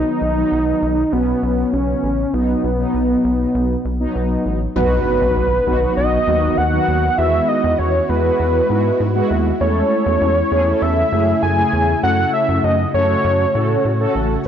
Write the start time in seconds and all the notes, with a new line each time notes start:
Already playing: F#3 B3 D#4
0.22 B1
0.37 F#3 B3 D#4
0.52 B1
0.82 B1
1.12 B1 F#3 B3 C#4
1.43 B1
1.73 B1 C#4
2.03 A1
2.34 B1 F#3 B3 D#4
2.64 B1
2.79 F#3 B3 D#4
2.94 B1
3.24 B1
3.55 B1
3.85 B1
4.00 F#3 B3 D#4
4.15 B1
4.46 A1
4.76 B1 D#3 F#3 B3 D#4 F#4 B4, impact
5.21 B1
5.37 B1
5.67 B1 F#3 B3 D#4 F#4
5.82 F#3 B3 D#4 F#4
5.97 B1 D#5
6.27 D#2 F#3 B3 D#4 F#4
6.57 D#2 F#5
6.73 F#3 B3 D#4 F#4
6.88 D#2
7.18 E2 G#3 B3 E4 F#4 E5
7.48 D#5
7.64 E2
7.78 E2 C#5
8.09 E2 G#3 B3 E4 F#4 B4
8.24 G#3 B3 E4 F#4
8.40 E2
8.70 G#2 G#3 B3 E4 F#4
9.00 G#2
9.15 G#3 B3 E4 F#4
9.31 D#2
9.61 E2 C#3 A3 C#4 E4 A4 C#5
10.06 E2
10.21 E2
10.52 E2 A3 C#4 E4 G#4
10.67 A3 C#4 E4 A4
10.82 E2 E5
11.12 F#2 A3 C#4 E4 G#4
11.43 F#2 G#5
11.58 A3 C#4 E4 G#4
11.73 E2
12.03 F#2 A3 C#4 F#4 A4 F#5
12.34 E5
12.49 F#2
12.64 F#2 D#5
12.94 F#2 A3 C#4 F#4 A4 C#5
13.09 A3 C#4 F#4 A4
13.24 F#2
13.55 A2 A3 C#4 F#4 A4
13.85 A2
14.00 A3 C#4 F#4 A4
14.15 A1